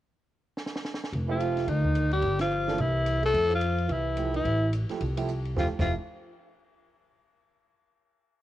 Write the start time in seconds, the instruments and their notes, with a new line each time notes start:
0.57 snare
0.66 snare
0.76 snare
0.85 snare
0.94 snare
1.04 snare
1.13 upright bass F1, kick, ride
1.28 tenor saxophone F3, grand piano F3 A3 G4 E5, alto saxophone F4
1.40 hi-hat pedal, ride
1.57 snare, ride
1.67 upright bass D2, tenor saxophone D#3, alto saxophone D#4, kick, ride
1.85 kick
1.95 hi-hat pedal, ride
2.11 tenor saxophone G3, alto saxophone G4, ride
2.22 upright bass G1, kick, ride
2.39 tenor saxophone F3, alto saxophone F4, snare, ride
2.50 hi-hat pedal
2.67 grand piano E3 A#3 D4 A4, snare
2.78 upright bass C2, tenor saxophone E3, alto saxophone E4, kick, ride
3.06 hi-hat pedal, ride
3.21 tenor saxophone A3, ride
3.26 alto saxophone A4
3.34 upright bass F2, kick, ride
3.49 tenor saxophone F3, ride
3.55 alto saxophone F4
3.61 hi-hat pedal, ride
3.78 ride
3.89 upright bass C2, tenor saxophone E3, kick, ride
3.93 alto saxophone E4
4.17 grand piano F3 A3 E4 G4, hi-hat pedal, ride
4.33 tenor saxophone E3, alto saxophone E4, ride
4.45 upright bass A1, kick, ride
4.73 hi-hat pedal, ride
4.89 grand piano F3 A3 E4 G4, muted upright bass stroke, snare, ride
5.00 upright bass C2, kick, ride
5.17 grand piano F3 A3 E4 G4, ride
5.28 hi-hat pedal
5.45 ride
5.56 upright bass F1, grand piano F3 A3 E4 G4, tenor saxophone F3, alto saxophone F4, kick, snare
5.78 upright bass F1, tenor saxophone F3, grand piano F3 A3 E4 G4, alto saxophone F4, kick, snare, crash